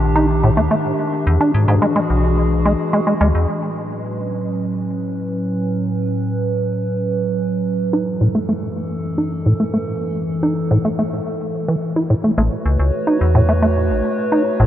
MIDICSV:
0, 0, Header, 1, 4, 480
1, 0, Start_track
1, 0, Key_signature, 3, "major"
1, 0, Tempo, 555556
1, 1093, Time_signature, 4, 2, 24, 8
1, 12671, End_track
2, 0, Start_track
2, 0, Title_t, "Ambient pad"
2, 0, Program_c, 0, 92
2, 0, Note_on_c, 0, 51, 83
2, 0, Note_on_c, 0, 62, 74
2, 0, Note_on_c, 0, 67, 84
2, 1073, Note_off_c, 0, 51, 0
2, 1073, Note_off_c, 0, 67, 0
2, 1094, Note_on_c, 0, 52, 81
2, 1094, Note_on_c, 0, 68, 90
2, 1095, Note_on_c, 0, 66, 74
2, 2978, Note_off_c, 0, 62, 0
2, 2994, Note_off_c, 0, 52, 0
2, 2994, Note_off_c, 0, 66, 0
2, 2994, Note_off_c, 0, 68, 0
2, 3012, Note_on_c, 0, 45, 73
2, 3012, Note_on_c, 0, 54, 69
2, 3012, Note_on_c, 0, 61, 66
2, 3013, Note_on_c, 0, 71, 82
2, 6818, Note_off_c, 0, 45, 0
2, 6818, Note_off_c, 0, 54, 0
2, 6818, Note_off_c, 0, 61, 0
2, 6818, Note_off_c, 0, 71, 0
2, 6851, Note_on_c, 0, 42, 77
2, 6851, Note_on_c, 0, 52, 70
2, 6851, Note_on_c, 0, 69, 83
2, 10657, Note_off_c, 0, 42, 0
2, 10657, Note_off_c, 0, 52, 0
2, 10657, Note_off_c, 0, 69, 0
2, 10691, Note_on_c, 0, 66, 70
2, 10691, Note_on_c, 0, 73, 90
2, 10692, Note_on_c, 0, 57, 78
2, 10692, Note_on_c, 0, 71, 75
2, 12671, Note_off_c, 0, 57, 0
2, 12671, Note_off_c, 0, 66, 0
2, 12671, Note_off_c, 0, 71, 0
2, 12671, Note_off_c, 0, 73, 0
2, 12671, End_track
3, 0, Start_track
3, 0, Title_t, "Acid bass"
3, 0, Program_c, 1, 38
3, 133, Note_on_c, 1, 63, 79
3, 227, Note_off_c, 1, 63, 0
3, 374, Note_on_c, 1, 45, 78
3, 436, Note_off_c, 1, 45, 0
3, 493, Note_on_c, 1, 57, 77
3, 530, Note_off_c, 1, 57, 0
3, 612, Note_on_c, 1, 57, 84
3, 650, Note_off_c, 1, 57, 0
3, 1213, Note_on_c, 1, 62, 77
3, 1308, Note_off_c, 1, 62, 0
3, 1452, Note_on_c, 1, 44, 80
3, 1515, Note_off_c, 1, 44, 0
3, 1572, Note_on_c, 1, 56, 81
3, 1610, Note_off_c, 1, 56, 0
3, 1691, Note_on_c, 1, 56, 76
3, 1730, Note_off_c, 1, 56, 0
3, 2292, Note_on_c, 1, 56, 77
3, 2355, Note_off_c, 1, 56, 0
3, 2532, Note_on_c, 1, 56, 101
3, 2595, Note_off_c, 1, 56, 0
3, 2651, Note_on_c, 1, 56, 80
3, 2715, Note_off_c, 1, 56, 0
3, 2771, Note_on_c, 1, 56, 99
3, 2835, Note_off_c, 1, 56, 0
3, 6851, Note_on_c, 1, 63, 77
3, 6947, Note_off_c, 1, 63, 0
3, 7091, Note_on_c, 1, 45, 73
3, 7155, Note_off_c, 1, 45, 0
3, 7212, Note_on_c, 1, 57, 76
3, 7250, Note_off_c, 1, 57, 0
3, 7332, Note_on_c, 1, 57, 76
3, 7370, Note_off_c, 1, 57, 0
3, 7931, Note_on_c, 1, 63, 72
3, 8027, Note_off_c, 1, 63, 0
3, 8172, Note_on_c, 1, 45, 75
3, 8235, Note_off_c, 1, 45, 0
3, 8292, Note_on_c, 1, 57, 76
3, 8330, Note_off_c, 1, 57, 0
3, 8411, Note_on_c, 1, 57, 72
3, 8450, Note_off_c, 1, 57, 0
3, 9012, Note_on_c, 1, 63, 73
3, 9107, Note_off_c, 1, 63, 0
3, 9252, Note_on_c, 1, 45, 77
3, 9316, Note_off_c, 1, 45, 0
3, 9372, Note_on_c, 1, 57, 73
3, 9410, Note_off_c, 1, 57, 0
3, 9492, Note_on_c, 1, 57, 69
3, 9530, Note_off_c, 1, 57, 0
3, 10093, Note_on_c, 1, 52, 74
3, 10156, Note_off_c, 1, 52, 0
3, 10332, Note_on_c, 1, 64, 74
3, 10396, Note_off_c, 1, 64, 0
3, 10452, Note_on_c, 1, 45, 74
3, 10490, Note_off_c, 1, 45, 0
3, 10572, Note_on_c, 1, 57, 92
3, 10636, Note_off_c, 1, 57, 0
3, 10692, Note_on_c, 1, 57, 83
3, 10730, Note_off_c, 1, 57, 0
3, 11292, Note_on_c, 1, 63, 76
3, 11387, Note_off_c, 1, 63, 0
3, 11532, Note_on_c, 1, 45, 76
3, 11596, Note_off_c, 1, 45, 0
3, 11652, Note_on_c, 1, 57, 83
3, 11690, Note_off_c, 1, 57, 0
3, 11771, Note_on_c, 1, 57, 80
3, 11810, Note_off_c, 1, 57, 0
3, 12372, Note_on_c, 1, 63, 76
3, 12467, Note_off_c, 1, 63, 0
3, 12612, Note_on_c, 1, 45, 85
3, 12671, Note_off_c, 1, 45, 0
3, 12671, End_track
4, 0, Start_track
4, 0, Title_t, "FM bass"
4, 0, Program_c, 2, 39
4, 0, Note_on_c, 2, 34, 78
4, 494, Note_on_c, 2, 39, 84
4, 507, Note_off_c, 2, 34, 0
4, 594, Note_off_c, 2, 39, 0
4, 1094, Note_on_c, 2, 40, 102
4, 1194, Note_off_c, 2, 40, 0
4, 1333, Note_on_c, 2, 44, 97
4, 1433, Note_off_c, 2, 44, 0
4, 1452, Note_on_c, 2, 44, 91
4, 1553, Note_off_c, 2, 44, 0
4, 1814, Note_on_c, 2, 35, 79
4, 2382, Note_off_c, 2, 35, 0
4, 2772, Note_on_c, 2, 38, 102
4, 2873, Note_off_c, 2, 38, 0
4, 2893, Note_on_c, 2, 40, 85
4, 2993, Note_off_c, 2, 40, 0
4, 10692, Note_on_c, 2, 33, 96
4, 10793, Note_off_c, 2, 33, 0
4, 10932, Note_on_c, 2, 37, 91
4, 11033, Note_off_c, 2, 37, 0
4, 11053, Note_on_c, 2, 37, 91
4, 11153, Note_off_c, 2, 37, 0
4, 11412, Note_on_c, 2, 40, 83
4, 12012, Note_on_c, 2, 33, 83
4, 12025, Note_off_c, 2, 40, 0
4, 12113, Note_off_c, 2, 33, 0
4, 12611, Note_on_c, 2, 33, 97
4, 12671, Note_off_c, 2, 33, 0
4, 12671, End_track
0, 0, End_of_file